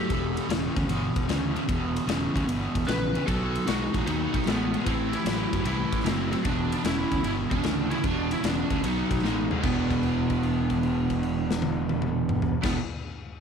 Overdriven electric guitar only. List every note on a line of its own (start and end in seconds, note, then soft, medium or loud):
0.09 0.47 E2 medium
0.09 0.47 B2 medium
0.49 0.73 E2 medium
0.49 0.73 C#3 medium
0.76 0.87 E2 medium
0.76 0.88 C#3 medium
0.88 1.26 E2 medium
0.88 1.26 B2 medium
1.28 1.52 E2 medium
1.28 1.53 C#3 medium
1.55 1.66 E2 medium
1.55 1.67 C#3 medium
1.68 2.05 E2 medium
1.68 2.05 B2 medium
2.07 2.31 E2 medium
2.07 2.32 C#3 medium
2.34 2.46 E2 medium
2.34 2.46 C#3 medium
2.47 2.85 E2 medium
2.47 2.85 B2 loud
2.87 3.11 E2 medium
2.87 3.12 C#3 medium
3.14 3.25 E2 medium
3.14 3.26 C#3 medium
3.26 3.64 B2 medium
3.26 3.64 F#3 medium
3.67 3.91 B2 medium
3.67 3.91 G#3 medium
3.93 4.05 B2 medium
3.93 4.05 G#3 medium
4.06 4.43 B2 medium
4.06 4.44 F#3 medium
4.46 4.70 B2 medium
4.46 4.71 G#3 loud
4.73 4.85 B2 medium
4.73 4.85 G#3 medium
4.86 5.23 A2 medium
4.86 5.23 E3 medium
5.25 5.50 A2 medium
5.25 5.50 F#3 medium
5.53 5.64 A2 medium
5.53 5.64 F#3 medium
5.66 6.03 A2 medium
5.66 6.03 E3 medium
6.05 6.29 A2 medium
6.05 6.29 F#3 medium
6.32 6.43 A2 medium
6.32 6.43 F#3 medium
6.44 6.82 E2 medium
6.44 6.82 B2 medium
6.84 7.09 E2 medium
6.84 7.09 C#3 medium
7.11 7.22 E2 medium
7.11 7.23 C#3 medium
7.23 7.61 E2 medium
7.23 7.61 B2 medium
7.63 7.88 E2 medium
7.63 7.88 C#3 medium
7.90 8.02 E2 medium
7.90 8.02 C#3 medium
8.03 8.41 E2 medium
8.03 8.41 B2 medium
8.44 8.68 E2 medium
8.44 8.68 C#3 medium
8.71 8.82 E2 medium
8.71 8.83 C#3 medium
8.83 9.21 B2 medium
8.83 9.21 F#3 medium
9.23 9.48 B2 medium
9.23 9.48 G#3 loud
9.50 9.62 B2 medium
9.50 9.62 G#3 medium
9.61 12.62 E2 medium
9.61 12.64 B2 loud
9.65 12.66 E3 loud
12.62 12.77 E2 medium
12.62 12.79 B2 medium
12.66 12.79 E3 medium